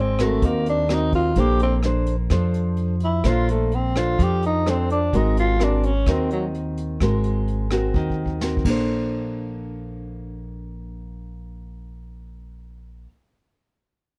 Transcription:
Already playing: G#1 G#3
0.01 C4
0.19 A3 C4 F#4 A#4, cross-stick, closed hi-hat
0.42 D#2 D#3 A#3, kick, closed hi-hat
0.66 D4, closed hi-hat
0.89 C4 D#4 F#4 A#4, cross-stick, closed hi-hat
1.13 F4, kick, closed hi-hat
1.36 A#1 A#3 D4 A4 C5, kick, closed hi-hat
1.40 G4
1.59 C4, closed hi-hat
1.83 D4 A4 C5, cross-stick, closed hi-hat
2.06 closed hi-hat
2.30 F2 F3 D4 A4 C5, kick, cross-stick, closed hi-hat
2.54 closed hi-hat
2.77 closed hi-hat
3.00 E4, closed hi-hat
3.24 A#1 A#3 D4 A4 C5, kick, cross-stick, closed hi-hat
3.28 F4
3.49 A3, closed hi-hat
3.71 C4, closed hi-hat
3.96 D4 F4 A4 C5, cross-stick, closed hi-hat
4.18 F2 F3, kick, closed hi-hat
4.23 G4
4.42 D#4, closed hi-hat
4.66 C4 D4 A4 C5, cross-stick, closed hi-hat
4.90 D4, closed hi-hat
5.13 G#1 G#3 C4 D#4 F#4 A#4, kick, closed hi-hat
5.37 F4, closed hi-hat
5.60 C4 D4 F#4 A#4, cross-stick, closed hi-hat
5.83 C#4, closed hi-hat
6.06 D#2 D#3 C4 F#4 A#4, kick, cross-stick, closed hi-hat
6.12 C4
6.30 F#3, closed hi-hat
6.54 closed hi-hat
6.77 closed hi-hat
7.00 G#1 G#3 C4 F#4 A#4, kick, cross-stick, closed hi-hat
7.24 closed hi-hat
7.48 closed hi-hat
7.71 C4 F#4 A#4, cross-stick, closed hi-hat
7.94 D#2 D#3, kick
8.10 kick
8.26 kick
8.41 C4 F#4 A#4, snare
8.57 kick
8.64 A#1 A#3 D4 A4, kick, crash
8.70 C5

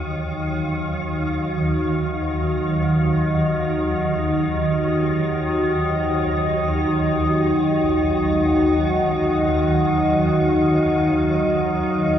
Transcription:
Already playing: D#2 D#3 F#3 D#4 F#4 D#5
6.27 D#2
7.82 A#1
8.33 G#3

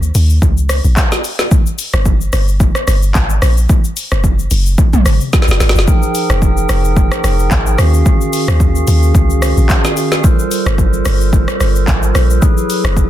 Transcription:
Already playing: D#2
0.03 shaker
0.15 D#2, open hi-hat, shaker
0.30 shaker
0.42 C#2, kick, shaker
0.57 shaker
0.69 cross-stick, open hi-hat, shaker
0.84 A#1, shaker
0.97 kick, clap, shaker
1.12 snare, shaker
1.24 open hi-hat, shaker
1.39 snare, shaker
1.51 kick, shaker
1.66 shaker
1.79 open hi-hat, shaker
1.93 G1, cross-stick, shaker
2.06 kick, shaker
2.21 shaker
2.33 G1, cross-stick, open hi-hat, shaker
2.48 shaker
2.60 kick, shaker
2.75 cross-stick, shaker
2.88 G1, cross-stick, open hi-hat, shaker
3.02 shaker
3.15 G#1, kick, clap, shaker
3.30 shaker
3.42 A#1, cross-stick, open hi-hat, shaker
3.57 shaker
3.69 kick, shaker
3.84 shaker
3.97 open hi-hat, shaker
4.12 F#1, cross-stick, shaker
4.24 kick, shaker
4.39 shaker
4.51 F#1, open hi-hat, shaker
4.66 shaker
4.78 kick, shaker
4.93 A#1, mid tom, shaker
5.06 G#1, cross-stick, open hi-hat, shaker
5.21 shaker
5.33 kick, snare, shaker
5.42 snare
5.48 F#1, snare, shaker
5.60 G#1, snare, open hi-hat, shaker
5.69 snare
5.75 F#1, snare, shaker
5.87 F3 D#4 G#4 A#4 G5, kick, shaker
6.03 shaker
6.15 open hi-hat, shaker
6.30 F1, cross-stick, shaker
6.42 kick, shaker
6.57 shaker
6.69 F1, cross-stick, open hi-hat, shaker
6.84 shaker
6.97 kick, shaker
7.12 cross-stick, shaker
7.24 F1, cross-stick, open hi-hat, shaker
7.39 shaker
7.51 G#1, kick, clap, shaker
7.66 shaker
7.78 D#2 D#3 C#4 F#4 G#4 F5, cross-stick, open hi-hat, shaker
7.94 shaker
8.06 kick, shaker
8.21 shaker
8.33 open hi-hat, shaker
8.48 D#2, cross-stick, shaker
8.60 kick, shaker
8.75 shaker
8.87 D#2, open hi-hat, shaker
9.03 shaker
9.15 C#2, kick, shaker
9.30 shaker
9.42 cross-stick, open hi-hat, shaker
9.57 A#1, shaker
9.69 kick, clap, shaker
9.84 snare, shaker
9.97 open hi-hat, shaker
10.12 snare, shaker
10.24 G3 F4 A4 A#4 C5, kick, shaker
10.39 shaker
10.51 open hi-hat, shaker
10.66 G1, cross-stick, shaker
10.78 kick, shaker
10.93 shaker
11.05 G1, cross-stick, open hi-hat, shaker
11.21 shaker
11.33 kick, shaker
11.48 cross-stick, shaker
11.60 G1, cross-stick, open hi-hat, shaker
11.75 shaker
11.88 G#1, kick, clap, shaker
12.03 shaker
12.15 A#1, cross-stick, open hi-hat, shaker
12.30 shaker
12.42 F#3 E4 G#4 A4 B4, kick, shaker
12.57 shaker
12.70 open hi-hat, shaker
12.84 F#1, cross-stick, shaker
12.97 kick, shaker

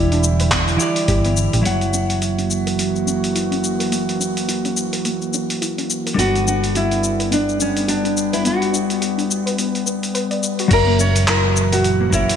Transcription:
Already playing: E1 D3 E3 G3 E4 G4 D5
0.12 D4, open hi-hat, shaker
0.24 shaker
0.40 B4, open hi-hat, shaker
0.51 B3, kick, clap, open hi-hat, shaker
0.68 open hi-hat, shaker
0.77 E3 E4 G4, shaker
0.82 D5
0.96 open hi-hat, shaker
1.08 G1 G4, kick, open hi-hat, shaker
1.25 B3, open hi-hat, shaker
1.37 shaker
1.53 A1 G4, open hi-hat, shaker
1.62 F#1 F#3 A#3 E4 C#5, open hi-hat
1.66 E3 A#3 F#4 F#5, shaker
1.81 open hi-hat, shaker
1.94 C#4, shaker
2.10 open hi-hat, shaker
2.22 E4, open hi-hat, shaker
2.38 C#4, open hi-hat, shaker
2.51 shaker
2.66 A#4, open hi-hat, shaker
2.78 A#3, open hi-hat, shaker
2.96 shaker
3.06 C#4, shaker
3.24 open hi-hat, shaker
3.35 E4, open hi-hat, shaker
3.51 C#4, open hi-hat, shaker
3.64 shaker
3.79 A#4, open hi-hat, shaker
3.91 A#3, open hi-hat, shaker
4.09 open hi-hat, shaker
4.20 C#4, shaker
4.37 open hi-hat, shaker
4.48 E4, open hi-hat, shaker
4.65 C#4, open hi-hat, shaker
4.77 shaker
4.93 A#4, open hi-hat, shaker
5.05 A#3, open hi-hat, shaker
5.22 shaker
5.34 C#4, shaker
5.50 open hi-hat, shaker
5.62 E4, open hi-hat, shaker
5.78 C#4, open hi-hat, shaker
5.90 shaker
6.06 A#4, open hi-hat, shaker
6.14 G1 G3 B3 D4 A4 B4
6.19 G3 B3 F#4 F#5, open hi-hat, shaker
6.35 open hi-hat, shaker
6.47 D4 F#4, shaker
6.64 open hi-hat, shaker
6.75 E4 F#4, open hi-hat, shaker
6.91 D4, open hi-hat, shaker
7.04 shaker
7.19 B4, open hi-hat, shaker
7.31 B3 D4, open hi-hat, shaker
7.49 shaker
7.59 C#4 D4, shaker
7.77 open hi-hat, shaker
7.88 D4 F#4, open hi-hat, shaker
8.04 D4, open hi-hat, shaker
8.17 shaker
8.33 E4 B4, open hi-hat, shaker
8.45 B3 F#4, open hi-hat, shaker
8.62 open hi-hat, shaker
8.73 D4, shaker
8.90 open hi-hat, shaker
9.01 F#4, open hi-hat, shaker
9.18 D4, open hi-hat, shaker
9.31 shaker
9.46 B4, open hi-hat, shaker
9.56 B3 E4, open hi-hat, shaker
9.75 open hi-hat, shaker
9.86 B3, shaker
10.03 open hi-hat, shaker
10.14 B4, open hi-hat, shaker
10.31 D5, open hi-hat, shaker
10.43 shaker
10.59 F#4, open hi-hat, shaker
10.68 F#1 A#2 E3 F#3 F#4 A#4 C#5, kick, open hi-hat, crash, shaker
10.73 A#4 E5
10.87 A#3
10.99 C#4 C#5, shaker
11.16 open hi-hat, shaker
11.28 E4 A#4, clap, open hi-hat, shaker
11.44 F#4
11.57 shaker
11.72 F#4 A#4, open hi-hat, shaker
11.84 open hi-hat, shaker
12.00 A#3
12.10 F#3 C#4 E4 F#4 A#4 C#5, kick, shaker
12.15 E5
12.29 open hi-hat, shaker

